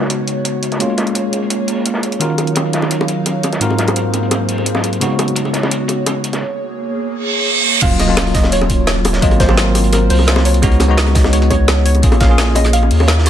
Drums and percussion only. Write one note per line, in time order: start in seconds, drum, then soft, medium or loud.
0.01 snare soft
0.10 closed hi-hat medium
0.28 closed hi-hat medium
0.45 closed hi-hat medium
0.63 closed hi-hat medium
0.72 snare soft
0.72 closed hi-hat soft
0.80 closed hi-hat medium
0.90 closed hi-hat soft
0.97 snare medium
0.97 closed hi-hat medium
1.07 closed hi-hat soft
1.15 closed hi-hat medium
1.33 closed hi-hat medium
1.42 closed hi-hat soft
1.50 closed hi-hat medium
1.68 closed hi-hat medium
1.68 open hi-hat medium
1.86 closed hi-hat medium
1.94 snare soft
2.03 closed hi-hat medium
2.12 closed hi-hat soft
2.21 closed hi-hat medium
2.30 closed hi-hat soft
2.38 closed hi-hat medium
2.38 high bongo soft
2.47 closed hi-hat soft
2.55 closed hi-hat medium
2.55 high bongo medium
2.65 closed hi-hat soft
2.73 snare medium
2.73 closed hi-hat medium
2.82 snare soft
2.82 high bongo medium
2.91 closed hi-hat medium
3.01 high bongo medium
3.08 closed hi-hat medium
3.26 closed hi-hat medium
3.26 high bongo soft
3.43 closed hi-hat medium
3.43 high bongo medium
3.53 snare soft
3.53 closed hi-hat soft
3.61 closed hi-hat medium
3.70 closed hi-hat soft
3.70 high bongo soft
3.79 snare medium
3.79 closed hi-hat medium
3.88 closed hi-hat soft
3.88 high bongo medium
3.96 closed hi-hat medium
4.14 closed hi-hat medium
4.14 high bongo soft
4.23 closed hi-hat soft
4.31 closed hi-hat medium
4.31 high bongo medium
4.49 closed hi-hat medium
4.49 open hi-hat medium
4.58 high bongo soft
4.66 closed hi-hat medium
4.75 snare soft
4.75 high bongo medium
4.84 closed hi-hat medium
4.93 closed hi-hat soft
5.01 closed hi-hat medium
5.01 high bongo soft
5.10 closed hi-hat soft
5.19 closed hi-hat medium
5.19 high bongo medium
5.28 closed hi-hat soft
5.36 closed hi-hat medium
5.45 closed hi-hat soft
5.45 high bongo soft
5.53 snare soft
5.53 closed hi-hat medium
5.63 snare soft
5.63 high bongo medium
5.71 closed hi-hat medium
5.88 closed hi-hat medium
5.88 high bongo soft
6.06 closed hi-hat medium
6.06 high bongo medium
6.24 closed hi-hat medium
6.33 snare soft
6.33 closed hi-hat soft
6.33 high bongo soft
7.82 kick loud
7.82 closed hi-hat loud
7.82 closed hi-hat medium
7.82 crash loud
7.91 closed hi-hat soft
7.99 snare medium
7.99 closed hi-hat medium
7.99 high bongo medium
8.17 snare loud
8.17 closed hi-hat loud
8.17 closed hi-hat medium
8.17 high bongo medium
8.27 closed hi-hat soft
8.34 kick loud
8.34 snare medium
8.34 snare soft
8.34 closed hi-hat medium
8.34 open hi-hat medium
8.43 snare medium
8.43 high bongo medium
8.52 closed hi-hat loud
8.61 high bongo medium
8.70 kick medium
8.70 closed hi-hat medium
8.87 snare loud
8.87 closed hi-hat medium
8.87 closed hi-hat loud
8.87 high bongo soft
9.05 closed hi-hat medium
9.05 open hi-hat medium
9.05 high bongo medium
9.13 snare soft
9.13 closed hi-hat soft
9.22 kick loud
9.22 closed hi-hat medium
9.22 closed hi-hat loud
9.31 closed hi-hat soft
9.31 high bongo medium
9.40 kick loud
9.40 snare medium
9.40 closed hi-hat medium
9.49 high bongo medium
9.57 snare loud
9.57 closed hi-hat medium
9.75 closed hi-hat medium
9.75 open hi-hat medium
9.75 high bongo medium
9.84 closed hi-hat soft
9.93 closed hi-hat medium
9.93 high bongo medium
10.10 closed hi-hat medium
10.10 open hi-hat medium
10.19 high bongo medium
10.27 snare loud
10.27 closed hi-hat medium
10.36 snare soft
10.36 high bongo medium
10.45 closed hi-hat medium
10.45 open hi-hat medium
10.54 closed hi-hat soft
10.62 kick loud
10.62 closed hi-hat medium
10.62 high bongo medium
10.71 closed hi-hat soft
10.80 snare medium
10.80 closed hi-hat medium
10.80 high bongo medium
10.97 snare loud
10.97 closed hi-hat medium
11.06 closed hi-hat soft
11.06 high bongo medium
11.15 kick loud
11.15 snare medium
11.15 snare soft
11.15 closed hi-hat medium
11.15 open hi-hat medium
11.24 snare soft
11.24 high bongo medium
11.33 closed hi-hat medium
11.42 snare soft
11.51 kick medium
11.51 closed hi-hat medium
11.51 high bongo medium
11.68 snare loud
11.68 closed hi-hat medium
11.68 high bongo medium
11.86 closed hi-hat medium
11.86 open hi-hat medium
11.95 closed hi-hat soft
11.95 high bongo medium
12.03 kick loud
12.03 closed hi-hat medium
12.12 closed hi-hat soft
12.12 high bongo medium
12.20 kick loud
12.20 snare medium
12.20 closed hi-hat medium
12.38 snare loud
12.38 closed hi-hat medium
12.38 high bongo medium
12.55 closed hi-hat medium
12.55 open hi-hat medium
12.55 high bongo medium
12.64 snare soft
12.64 closed hi-hat soft
12.73 closed hi-hat medium
12.83 high bongo medium
12.91 closed hi-hat medium
12.91 open hi-hat medium
13.00 high bongo medium
13.08 snare loud
13.08 closed hi-hat medium
13.18 snare soft
13.26 closed hi-hat medium
13.26 open hi-hat medium
13.26 high bongo soft